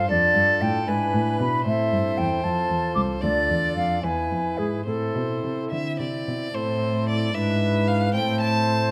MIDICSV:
0, 0, Header, 1, 5, 480
1, 0, Start_track
1, 0, Key_signature, 0, "minor"
1, 0, Tempo, 524017
1, 87, Time_signature, 6, 3, 24, 8
1, 3447, Tempo, 556586
1, 5847, Tempo, 529568
1, 7992, End_track
2, 0, Start_track
2, 0, Title_t, "Flute"
2, 0, Program_c, 0, 73
2, 90, Note_on_c, 0, 74, 78
2, 564, Note_on_c, 0, 79, 79
2, 578, Note_off_c, 0, 74, 0
2, 805, Note_on_c, 0, 80, 65
2, 819, Note_off_c, 0, 79, 0
2, 1283, Note_off_c, 0, 80, 0
2, 1289, Note_on_c, 0, 83, 74
2, 1520, Note_off_c, 0, 83, 0
2, 1531, Note_on_c, 0, 76, 72
2, 1995, Note_on_c, 0, 79, 72
2, 2008, Note_off_c, 0, 76, 0
2, 2234, Note_on_c, 0, 81, 65
2, 2247, Note_off_c, 0, 79, 0
2, 2697, Note_off_c, 0, 81, 0
2, 2703, Note_on_c, 0, 86, 66
2, 2759, Note_off_c, 0, 86, 0
2, 2956, Note_on_c, 0, 74, 74
2, 3437, Note_off_c, 0, 74, 0
2, 3446, Note_on_c, 0, 77, 63
2, 3675, Note_off_c, 0, 77, 0
2, 3679, Note_on_c, 0, 80, 62
2, 4150, Note_on_c, 0, 68, 46
2, 4163, Note_off_c, 0, 80, 0
2, 4388, Note_off_c, 0, 68, 0
2, 4393, Note_on_c, 0, 69, 57
2, 5110, Note_off_c, 0, 69, 0
2, 6574, Note_on_c, 0, 71, 52
2, 7291, Note_on_c, 0, 72, 62
2, 7305, Note_off_c, 0, 71, 0
2, 7992, Note_off_c, 0, 72, 0
2, 7992, End_track
3, 0, Start_track
3, 0, Title_t, "Violin"
3, 0, Program_c, 1, 40
3, 78, Note_on_c, 1, 69, 57
3, 803, Note_on_c, 1, 71, 60
3, 817, Note_off_c, 1, 69, 0
3, 1512, Note_off_c, 1, 71, 0
3, 1517, Note_on_c, 1, 72, 62
3, 2951, Note_on_c, 1, 74, 58
3, 2964, Note_off_c, 1, 72, 0
3, 3679, Note_on_c, 1, 71, 49
3, 3692, Note_off_c, 1, 74, 0
3, 4396, Note_off_c, 1, 71, 0
3, 4405, Note_on_c, 1, 72, 42
3, 5069, Note_off_c, 1, 72, 0
3, 5126, Note_on_c, 1, 76, 57
3, 5350, Note_off_c, 1, 76, 0
3, 5376, Note_on_c, 1, 74, 55
3, 5850, Note_on_c, 1, 72, 66
3, 5863, Note_off_c, 1, 74, 0
3, 6334, Note_off_c, 1, 72, 0
3, 6341, Note_on_c, 1, 74, 62
3, 6574, Note_on_c, 1, 76, 62
3, 6588, Note_off_c, 1, 74, 0
3, 7052, Note_on_c, 1, 77, 65
3, 7066, Note_off_c, 1, 76, 0
3, 7291, Note_off_c, 1, 77, 0
3, 7295, Note_on_c, 1, 79, 70
3, 7528, Note_off_c, 1, 79, 0
3, 7537, Note_on_c, 1, 81, 68
3, 7992, Note_off_c, 1, 81, 0
3, 7992, End_track
4, 0, Start_track
4, 0, Title_t, "Pipe organ"
4, 0, Program_c, 2, 19
4, 42, Note_on_c, 2, 62, 36
4, 57, Note_on_c, 2, 65, 42
4, 71, Note_on_c, 2, 69, 42
4, 84, Note_on_c, 2, 41, 48
4, 300, Note_off_c, 2, 41, 0
4, 327, Note_on_c, 2, 43, 46
4, 541, Note_off_c, 2, 43, 0
4, 565, Note_on_c, 2, 45, 45
4, 742, Note_off_c, 2, 62, 0
4, 760, Note_on_c, 2, 62, 41
4, 767, Note_off_c, 2, 65, 0
4, 774, Note_off_c, 2, 69, 0
4, 774, Note_on_c, 2, 64, 42
4, 780, Note_off_c, 2, 45, 0
4, 788, Note_on_c, 2, 71, 42
4, 801, Note_on_c, 2, 44, 43
4, 1018, Note_off_c, 2, 44, 0
4, 1038, Note_on_c, 2, 45, 44
4, 1256, Note_off_c, 2, 45, 0
4, 1279, Note_on_c, 2, 47, 45
4, 1473, Note_off_c, 2, 64, 0
4, 1477, Note_off_c, 2, 62, 0
4, 1479, Note_on_c, 2, 60, 42
4, 1492, Note_off_c, 2, 71, 0
4, 1492, Note_on_c, 2, 64, 41
4, 1495, Note_off_c, 2, 47, 0
4, 1504, Note_on_c, 2, 69, 38
4, 1521, Note_on_c, 2, 45, 43
4, 1736, Note_off_c, 2, 45, 0
4, 1761, Note_on_c, 2, 43, 46
4, 1976, Note_off_c, 2, 43, 0
4, 2005, Note_on_c, 2, 40, 45
4, 2179, Note_off_c, 2, 60, 0
4, 2197, Note_on_c, 2, 60, 38
4, 2202, Note_off_c, 2, 64, 0
4, 2207, Note_off_c, 2, 69, 0
4, 2212, Note_on_c, 2, 65, 36
4, 2218, Note_off_c, 2, 40, 0
4, 2225, Note_on_c, 2, 69, 37
4, 2238, Note_on_c, 2, 41, 38
4, 2448, Note_off_c, 2, 60, 0
4, 2453, Note_off_c, 2, 41, 0
4, 2479, Note_on_c, 2, 40, 46
4, 2693, Note_off_c, 2, 40, 0
4, 2720, Note_on_c, 2, 36, 45
4, 2908, Note_off_c, 2, 65, 0
4, 2914, Note_on_c, 2, 62, 38
4, 2922, Note_off_c, 2, 69, 0
4, 2926, Note_on_c, 2, 65, 37
4, 2936, Note_off_c, 2, 36, 0
4, 2940, Note_on_c, 2, 69, 37
4, 2956, Note_on_c, 2, 38, 41
4, 3176, Note_off_c, 2, 38, 0
4, 3199, Note_on_c, 2, 40, 43
4, 3422, Note_off_c, 2, 40, 0
4, 3450, Note_on_c, 2, 41, 37
4, 3639, Note_off_c, 2, 62, 0
4, 3640, Note_on_c, 2, 59, 35
4, 3645, Note_off_c, 2, 65, 0
4, 3651, Note_off_c, 2, 69, 0
4, 3655, Note_on_c, 2, 64, 32
4, 3659, Note_off_c, 2, 41, 0
4, 3681, Note_on_c, 2, 40, 36
4, 3887, Note_off_c, 2, 59, 0
4, 3892, Note_off_c, 2, 40, 0
4, 3914, Note_on_c, 2, 41, 40
4, 4129, Note_off_c, 2, 41, 0
4, 4150, Note_on_c, 2, 44, 37
4, 4351, Note_off_c, 2, 64, 0
4, 4355, Note_on_c, 2, 60, 31
4, 4368, Note_on_c, 2, 64, 29
4, 4371, Note_off_c, 2, 44, 0
4, 4393, Note_on_c, 2, 45, 35
4, 4615, Note_off_c, 2, 45, 0
4, 4641, Note_on_c, 2, 47, 32
4, 4860, Note_off_c, 2, 47, 0
4, 4884, Note_on_c, 2, 48, 33
4, 5102, Note_off_c, 2, 48, 0
4, 5122, Note_on_c, 2, 50, 34
4, 5341, Note_off_c, 2, 50, 0
4, 5364, Note_on_c, 2, 48, 34
4, 5583, Note_off_c, 2, 48, 0
4, 5607, Note_on_c, 2, 47, 36
4, 5786, Note_off_c, 2, 60, 0
4, 5798, Note_off_c, 2, 64, 0
4, 5803, Note_on_c, 2, 60, 33
4, 5816, Note_on_c, 2, 64, 36
4, 5822, Note_off_c, 2, 47, 0
4, 5828, Note_on_c, 2, 69, 33
4, 5841, Note_on_c, 2, 45, 41
4, 6524, Note_off_c, 2, 64, 0
4, 6527, Note_off_c, 2, 60, 0
4, 6528, Note_on_c, 2, 62, 38
4, 6533, Note_off_c, 2, 45, 0
4, 6541, Note_off_c, 2, 69, 0
4, 6542, Note_on_c, 2, 64, 34
4, 6556, Note_on_c, 2, 71, 39
4, 6569, Note_on_c, 2, 44, 42
4, 7245, Note_off_c, 2, 62, 0
4, 7245, Note_off_c, 2, 64, 0
4, 7252, Note_off_c, 2, 44, 0
4, 7252, Note_on_c, 2, 60, 38
4, 7260, Note_off_c, 2, 71, 0
4, 7263, Note_on_c, 2, 64, 38
4, 7281, Note_on_c, 2, 69, 39
4, 7293, Note_on_c, 2, 45, 38
4, 7973, Note_off_c, 2, 45, 0
4, 7992, Note_off_c, 2, 60, 0
4, 7992, Note_off_c, 2, 64, 0
4, 7992, Note_off_c, 2, 69, 0
4, 7992, End_track
5, 0, Start_track
5, 0, Title_t, "Cello"
5, 0, Program_c, 3, 42
5, 89, Note_on_c, 3, 41, 62
5, 310, Note_off_c, 3, 41, 0
5, 319, Note_on_c, 3, 43, 62
5, 544, Note_off_c, 3, 43, 0
5, 563, Note_on_c, 3, 45, 57
5, 786, Note_off_c, 3, 45, 0
5, 802, Note_on_c, 3, 44, 63
5, 1026, Note_off_c, 3, 44, 0
5, 1043, Note_on_c, 3, 45, 60
5, 1265, Note_off_c, 3, 45, 0
5, 1282, Note_on_c, 3, 47, 59
5, 1504, Note_off_c, 3, 47, 0
5, 1519, Note_on_c, 3, 45, 59
5, 1743, Note_off_c, 3, 45, 0
5, 1761, Note_on_c, 3, 43, 60
5, 1984, Note_off_c, 3, 43, 0
5, 1999, Note_on_c, 3, 40, 58
5, 2221, Note_off_c, 3, 40, 0
5, 2234, Note_on_c, 3, 41, 54
5, 2458, Note_off_c, 3, 41, 0
5, 2473, Note_on_c, 3, 40, 57
5, 2697, Note_off_c, 3, 40, 0
5, 2710, Note_on_c, 3, 36, 56
5, 2938, Note_off_c, 3, 36, 0
5, 2960, Note_on_c, 3, 38, 61
5, 3186, Note_off_c, 3, 38, 0
5, 3200, Note_on_c, 3, 40, 55
5, 3430, Note_off_c, 3, 40, 0
5, 3450, Note_on_c, 3, 41, 49
5, 3665, Note_off_c, 3, 41, 0
5, 3680, Note_on_c, 3, 40, 50
5, 3899, Note_off_c, 3, 40, 0
5, 3916, Note_on_c, 3, 41, 53
5, 4138, Note_off_c, 3, 41, 0
5, 4155, Note_on_c, 3, 44, 50
5, 4381, Note_off_c, 3, 44, 0
5, 4400, Note_on_c, 3, 45, 45
5, 4626, Note_off_c, 3, 45, 0
5, 4644, Note_on_c, 3, 47, 48
5, 4869, Note_off_c, 3, 47, 0
5, 4886, Note_on_c, 3, 48, 43
5, 5110, Note_off_c, 3, 48, 0
5, 5132, Note_on_c, 3, 50, 43
5, 5354, Note_off_c, 3, 50, 0
5, 5370, Note_on_c, 3, 48, 47
5, 5593, Note_off_c, 3, 48, 0
5, 5612, Note_on_c, 3, 47, 46
5, 5832, Note_off_c, 3, 47, 0
5, 5849, Note_on_c, 3, 45, 55
5, 6537, Note_off_c, 3, 45, 0
5, 6575, Note_on_c, 3, 44, 49
5, 7294, Note_on_c, 3, 45, 56
5, 7308, Note_off_c, 3, 44, 0
5, 7992, Note_off_c, 3, 45, 0
5, 7992, End_track
0, 0, End_of_file